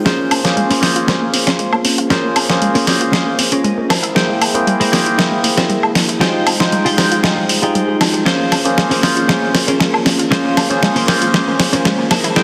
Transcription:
0.05 G#3 A#3 C#4 F4 G#4 A#4 C5, snare, closed hi-hat
0.19 A#3
0.31 C4, open hi-hat, high woodblock
0.44 A#3 C#4 F4 G#4 C5, snare, closed hi-hat
0.57 G#3, closed hi-hat
0.70 A#3 C#4 G#4 A#4 C5, open hi-hat
0.81 A#3 C4 C#4 F4 G#4 C5, snare, open hi-hat
0.96 F4, closed hi-hat
1.08 G#3 C#4 G#4 A#4 C5, snare, closed hi-hat
1.22 A#3
1.34 C4, open hi-hat
1.47 C#4 G#4 A#4 C5, snare, closed hi-hat
1.59 G#3, closed hi-hat
1.73 A#3, high woodblock
1.85 C4, open hi-hat
1.98 F4, closed hi-hat
2.10 G#3 A#3 C#4 F4 G#4 A#4 C5, snare, closed hi-hat
2.24 A#3
2.36 C4, open hi-hat, high woodblock
2.49 A#3 C#4 F4 G#4 C5, snare, closed hi-hat
2.62 G#3, closed hi-hat
2.75 A#3 C#4 G#4 A#4 C5, open hi-hat
2.87 A#3 C4 C#4 F4 G#4 C5, snare, open hi-hat
3.01 F4, closed hi-hat
3.12 G#3 C#4 G#4 A#4 D#5, snare, closed hi-hat
3.26 A#3
3.39 C4 F5, open hi-hat
3.51 C#4 G#4 A#4 C5, closed hi-hat
3.64 G#3 D#5, closed hi-hat
3.78 A#3
3.90 A#3 E4 G#4 A#4 C5 E5, snare, open hi-hat, high woodblock
4.03 E4, closed hi-hat
4.15 G3 A#3 E4 G#4 C5 G5, snare, closed hi-hat
4.29 G#3
4.41 A#3, open hi-hat, high woodblock
4.54 A#3 C4 E4 G#4 C5 G5, closed hi-hat
4.67 G3, closed hi-hat
4.80 G#3 E4 G#4 A#4 C5, open hi-hat
4.92 A#3 E4 G#4 C5 G5, snare, open hi-hat
5.06 E4, closed hi-hat
5.18 G3 E4 G#4 A#4 C5, snare, closed hi-hat
5.32 G#3
5.44 A#3, open hi-hat
5.57 C4 E4 G#4 A#4 C5, snare, closed hi-hat
5.69 G3, closed hi-hat
5.83 G#3, high woodblock
5.95 A#3, snare, open hi-hat
6.09 E4, closed hi-hat
6.20 G3 G#3 D#4 F4 G4 G#4 C5 D#5 G5, snare, closed hi-hat
6.34 G#3
6.47 C4, open hi-hat, high woodblock
6.60 G#3 D#4 F4 C5 G5, snare
6.72 G3, closed hi-hat
6.85 G#3 F4 G4 G#4 D#5, open hi-hat
6.97 G#3 C4 D#4 F4 C5 G5, snare, open hi-hat
7.12 F4, closed hi-hat
7.23 G3 F4 G4 G#4 D#5, snare, closed hi-hat
7.37 G#3
7.49 G3, open hi-hat
7.62 G#3 D#4 F4 G4 G#4 C5 D#5 G5, closed hi-hat
7.75 G3, closed hi-hat
7.88 G4
8.01 D#4, snare, open hi-hat, high woodblock
8.14 G3, closed hi-hat
8.26 G#3 A#3 C#4 F4 G#4 A#4 C5, snare, closed hi-hat
8.40 A#3
8.52 C4, snare, open hi-hat, high woodblock
8.65 A#3 C#4 F4 G#4 C5, closed hi-hat
8.77 G#3, snare, closed hi-hat
8.90 A#3 C#4 G#4 A#4 C5, open hi-hat
9.02 A#3 C4 C#4 F4 G#4 C5, snare, open hi-hat
9.16 F4, closed hi-hat
9.28 G#3 C#4 G#4 A#4 C5, snare, closed hi-hat
9.42 A#3
9.54 C4, snare, open hi-hat
9.67 C#4 G#4 A#4 C5, closed hi-hat
9.80 G#3, snare, closed hi-hat
9.93 A#3, high woodblock
10.05 C4, snare, open hi-hat
10.19 F4, closed hi-hat
10.31 G#3 A#3 C#4 F4 G#4 A#4 C5, snare, closed hi-hat
10.45 A#3
10.57 C4, snare, open hi-hat, high woodblock
10.70 A#3 C#4 F4 G#4 C5, closed hi-hat
10.82 G#3, snare, closed hi-hat
10.95 A#3 C#4 G#4 A#4 C5, open hi-hat
11.07 A#3 C4 C#4 F4 G#4 C5, snare, open hi-hat
11.22 F4, closed hi-hat
11.33 G#3 C#4 G#4 A#4 C5, snare, closed hi-hat
11.47 A#3
11.59 C4, snare, open hi-hat
11.73 C#4 G#4 A#4 C5, closed hi-hat
11.85 G#3, snare, closed hi-hat
11.98 A#3
12.11 A#3 E4 G#4 A#4 C5, snare, open hi-hat, high woodblock
12.24 E4, closed hi-hat
12.36 G3 A#3 E4 G#4 C5 G5, snare, closed hi-hat

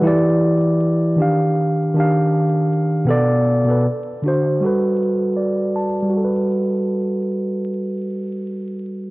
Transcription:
0.02 E3 E4 G4
0.07 D5
1.16 D#3 D4 G4
1.22 F5
1.95 D#3 D4 G4
2.00 F5
3.05 B2 B3 A4
3.11 D5
3.65 B2 B3 A4
3.71 B4
4.22 D3 D4 F#4
4.28 C5
4.61 G3 F#4 A4
4.67 B4
5.37 D5
5.76 A5
6.02 G3
6.10 F#4
6.17 A4
6.24 B4

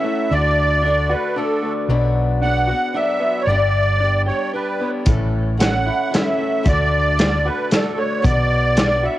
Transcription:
Already playing: C#4 E4 E5
0.05 A3 C#4 E4
0.31 D2 D3 A3 D4 F#4 D5
0.85 D3 A3 D4 F#4
1.10 A3 D4 F#4 B4
1.36 D3 A3 D4 F#4 A4
1.63 A3
1.89 B1 B2 F#3 B3 D4 F#4
2.42 F#3 B3 D4 F#4 F#5
2.68 B3 D4 F#4
2.94 F#3 B3 D4 F#4 E5
3.20 B3
3.41 C#5
3.45 G1 G2 D3 D5
3.50 G3 B3 D4 G4
4.01 G3 B3 D4 G4
4.27 G3 B3 D4 G4 C#5
4.53 G3 B3 D4 G4 B4
4.79 G3 B3 D4 G4
5.05 A1 A2 E3 A3 C#4 A4, kick, closed hi-hat
5.57 E3 A3 C#4 A4 F#5, snare, closed hi-hat
5.86 E4
6.11 E3 A3 C#4 A4 E5, closed hi-hat
6.15 snare
6.39 A3
6.63 D2 D3 A3 D4 F#4, kick, closed hi-hat
6.68 D5
7.17 D3 A3 D4 F#4, snare, closed hi-hat
7.45 A3 D4 F#4 B4
7.70 D3 A3 D4 F#4 A4, snare, closed hi-hat
7.97 A3 C#5
8.22 B1 B2 F#3 B3 D4 F#4 D5, kick, closed hi-hat
8.75 F#3 B3 D4 F#4, snare, closed hi-hat
9.04 B3 D4 F#4 E5

